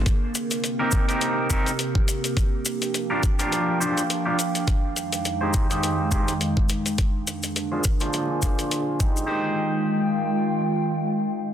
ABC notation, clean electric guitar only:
X:1
M:4/4
L:1/16
Q:"Swing 16ths" 1/4=104
K:Fdor
V:1 name="Clean electric guitar"
z4 z [CEGB]2 [CEGB]3 [CEGB] z4 z | z4 z [DFGB] z [DFGB]3 [DFGc] z2 [DFGB] z2 | z4 z [EGAc]2 [EGAc]3 [EGAc] z4 z | z4 z [DFAc] z [DFAc]3 [DFAc]4 [EGAc]2- |
[EGAc]16 |]